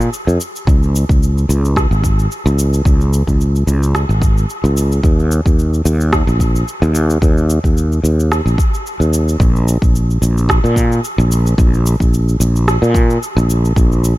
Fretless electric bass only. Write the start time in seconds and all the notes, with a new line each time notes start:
0.27 F2
0.67 C#2
1.09 C#2
1.49 C#2
1.91 G#1
2.46 C#2
2.85 C#2
3.27 C#2
3.67 C#2
4.09 G#1
4.64 C#2
5.03 D#2
5.46 D#2
5.85 D#2
6.27 A#1
6.82 D#2
7.22 D#2
7.64 D#2
8.04 D#2
8.46 A#1
9.00 D#2
9.40 A#1
9.82 A#1
10.22 A#1
10.64 A#2
11.18 A#1
11.58 A#1
12.00 A#1
12.40 A#1
12.82 A#2
13.37 A#1
13.76 A#1